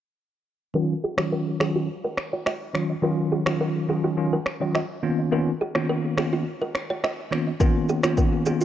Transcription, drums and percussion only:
1.18 finger snap medium
1.18 cross-stick loud
1.60 finger snap medium
1.60 cross-stick medium
2.17 finger snap medium
2.17 cross-stick medium
2.46 finger snap medium
2.46 cross-stick medium
2.75 finger snap medium
2.75 cross-stick medium
3.46 finger snap medium
3.46 cross-stick loud
4.46 finger snap medium
4.46 cross-stick medium
4.75 finger snap medium
4.75 cross-stick medium
5.75 finger snap medium
5.75 cross-stick loud
6.17 finger snap medium
6.17 cross-stick loud
6.75 finger snap medium
6.75 cross-stick medium
7.04 finger snap medium
7.04 cross-stick medium
7.32 finger snap medium
7.32 cross-stick medium
7.60 kick loud
7.60 shaker medium
7.89 shaker soft
8.04 finger snap medium
8.04 cross-stick loud
8.04 shaker medium
8.17 kick medium
8.17 shaker medium
8.46 shaker medium
8.61 shaker medium

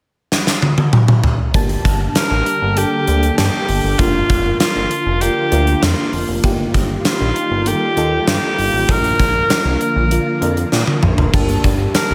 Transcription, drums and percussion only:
0.32 snare medium
0.47 snare medium
0.62 high tom medium
0.78 high tom medium
0.93 mid tom medium
1.08 mid tom medium
1.24 floor tom loud
1.54 kick loud
1.54 closed hi-hat medium
1.69 closed hi-hat medium
1.85 kick medium
1.85 closed hi-hat medium
2.15 snare loud
2.15 closed hi-hat medium
2.46 closed hi-hat medium
2.77 closed hi-hat medium
3.07 closed hi-hat medium
3.23 closed hi-hat soft
3.38 snare loud
3.38 closed hi-hat medium
3.69 open hi-hat medium
3.99 kick loud
3.99 closed hi-hat medium
4.30 kick medium
4.30 closed hi-hat medium
4.60 snare loud
4.60 closed hi-hat medium
4.91 closed hi-hat medium
5.21 closed hi-hat loud
5.52 closed hi-hat medium
5.67 closed hi-hat soft
5.83 snare loud
5.83 closed hi-hat medium
6.13 open hi-hat medium
6.44 kick loud
6.44 closed hi-hat medium
6.74 kick medium
6.74 closed hi-hat medium
7.05 snare loud
7.05 closed hi-hat medium
7.36 closed hi-hat medium
7.66 closed hi-hat medium
7.97 closed hi-hat medium
8.28 snare loud
8.28 closed hi-hat medium
8.58 open hi-hat medium
8.89 kick loud
8.89 closed hi-hat medium
9.04 closed hi-hat soft
9.19 kick medium
9.19 closed hi-hat medium
9.50 snare loud
9.50 closed hi-hat medium
9.81 closed hi-hat medium
10.11 closed hi-hat medium
10.42 closed hi-hat medium
10.57 closed hi-hat soft
10.72 snare medium
10.87 high tom medium
11.03 mid tom medium
11.18 floor tom medium
11.34 kick loud
11.34 splash medium
11.48 closed hi-hat soft
11.64 kick medium
11.64 closed hi-hat medium
11.95 snare loud
11.95 closed hi-hat medium

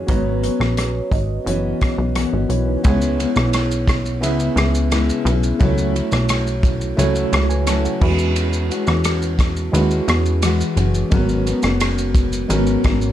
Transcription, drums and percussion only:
0.08 kick loud
0.08 closed hi-hat medium
0.44 closed hi-hat soft
0.61 cross-stick medium
0.77 cross-stick medium
0.77 closed hi-hat medium
1.11 kick medium
1.11 closed hi-hat soft
1.47 closed hi-hat medium
1.81 kick medium
1.81 cross-stick medium
1.81 closed hi-hat soft
2.15 cross-stick medium
2.15 closed hi-hat medium
2.50 closed hi-hat soft
2.85 kick loud
2.85 ride medium
2.85 shaker medium
3.02 shaker medium
3.20 ride soft
3.20 shaker medium
3.36 cross-stick medium
3.36 shaker soft
3.53 cross-stick medium
3.53 ride medium
3.53 shaker medium
3.71 shaker medium
3.88 kick medium
3.88 cross-stick loud
3.88 ride soft
3.88 shaker medium
4.06 shaker soft
4.23 ride medium
4.23 shaker medium
4.40 shaker soft
4.57 cross-stick loud
4.57 ride soft
4.57 shaker medium
4.75 shaker soft
4.92 cross-stick medium
4.92 ride medium
4.92 shaker medium
5.10 shaker medium
5.26 ride soft
5.26 shaker medium
5.43 shaker medium
5.61 kick loud
5.61 ride medium
5.61 shaker medium
5.78 shaker medium
5.96 ride soft
5.96 shaker medium
6.12 cross-stick medium
6.12 shaker medium
6.29 cross-stick medium
6.29 ride medium
6.29 shaker medium
6.47 shaker soft
6.63 kick loud
6.63 ride soft
6.63 shaker medium
6.81 shaker soft
6.99 ride medium
6.99 shaker medium
7.15 shaker soft
7.33 cross-stick loud
7.33 ride soft
7.33 shaker medium
7.50 shaker soft
7.67 cross-stick medium
7.67 ride medium
7.67 shaker medium
7.85 shaker medium
8.01 kick loud
8.01 crash medium
8.19 shaker medium
8.36 ride medium
8.36 shaker medium
8.53 shaker medium
8.71 ride soft
8.71 shaker medium
8.87 cross-stick medium
8.87 shaker soft
9.04 cross-stick medium
9.04 ride medium
9.04 shaker medium
9.22 shaker medium
9.39 kick loud
9.39 cross-stick loud
9.39 ride medium
9.39 shaker medium
9.57 shaker medium
9.75 ride medium
9.75 shaker medium
9.91 shaker soft
10.08 cross-stick loud
10.08 ride soft
10.08 shaker medium
10.26 shaker soft
10.42 cross-stick medium
10.42 ride medium
10.42 shaker medium
10.61 shaker medium
10.77 ride soft
10.77 shaker medium
10.94 shaker medium
11.12 kick loud
11.12 ride medium
11.12 shaker medium
11.29 shaker medium
11.47 ride soft
11.47 shaker medium
11.63 cross-stick medium
11.63 shaker soft
11.80 cross-stick medium
11.80 ride medium
11.80 shaker medium
11.98 shaker medium
12.15 kick loud
12.15 ride soft
12.15 shaker medium
12.33 shaker medium
12.50 ride medium
12.50 shaker medium
12.67 shaker soft
12.84 kick medium
12.84 cross-stick loud
12.84 ride soft
12.84 shaker medium
13.02 shaker soft

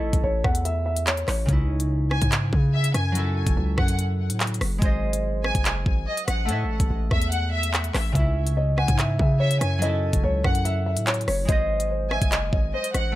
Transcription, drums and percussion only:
0.13 kick medium
0.13 closed hi-hat medium
0.44 kick loud
0.44 cross-stick medium
0.55 closed hi-hat medium
0.65 closed hi-hat medium
0.97 closed hi-hat medium
1.07 clap loud
1.07 closed hi-hat medium
1.17 closed hi-hat medium
1.28 cross-stick medium
1.28 clap medium
1.28 open hi-hat medium
1.49 kick loud
1.49 closed hi-hat medium
1.80 closed hi-hat medium
2.11 cross-stick loud
2.22 kick medium
2.22 closed hi-hat medium
2.32 clap loud
2.32 closed hi-hat medium
2.53 kick loud
2.84 closed hi-hat medium
2.94 cross-stick medium
2.94 closed hi-hat medium
3.15 closed hi-hat medium
3.47 kick loud
3.47 closed hi-hat medium
3.78 kick loud
3.78 cross-stick loud
3.88 closed hi-hat medium
3.99 closed hi-hat medium
4.30 closed hi-hat medium
4.40 clap loud
4.40 closed hi-hat medium
4.47 closed hi-hat medium
4.54 closed hi-hat medium
4.61 cross-stick loud
4.61 open hi-hat medium
4.82 kick loud
4.82 closed hi-hat medium
5.13 closed hi-hat medium
5.44 cross-stick loud
5.55 kick medium
5.55 closed hi-hat medium
5.65 clap loud
5.65 closed hi-hat medium
5.86 kick medium
6.17 closed hi-hat medium
6.28 cross-stick medium
6.28 closed hi-hat medium
6.49 closed hi-hat medium
6.80 kick medium
6.80 closed hi-hat medium
7.11 kick loud
7.11 cross-stick medium
7.22 closed hi-hat medium
7.32 closed hi-hat medium
7.63 closed hi-hat medium
7.74 clap loud
7.74 closed hi-hat medium
7.84 closed hi-hat medium
7.94 cross-stick loud
7.94 clap medium
7.94 open hi-hat medium
8.15 kick loud
8.15 closed hi-hat medium
8.47 closed hi-hat medium
8.78 cross-stick medium
8.88 kick medium
8.88 closed hi-hat medium
8.99 clap loud
8.99 closed hi-hat medium
9.19 kick medium
9.51 closed hi-hat medium
9.61 cross-stick medium
9.61 closed hi-hat medium
9.82 closed hi-hat medium
10.13 kick medium
10.13 closed hi-hat medium
10.44 kick loud
10.44 cross-stick loud
10.55 closed hi-hat medium
10.65 closed hi-hat medium
10.97 closed hi-hat medium
11.07 clap loud
11.07 closed hi-hat medium
11.14 closed hi-hat medium
11.21 closed hi-hat medium
11.28 cross-stick medium
11.28 open hi-hat medium
11.49 kick loud
11.49 closed hi-hat medium
11.80 closed hi-hat medium
12.11 cross-stick loud
12.22 kick medium
12.22 closed hi-hat medium
12.32 clap loud
12.32 closed hi-hat medium
12.53 kick loud
12.84 closed hi-hat medium
12.94 cross-stick medium
12.94 closed hi-hat medium

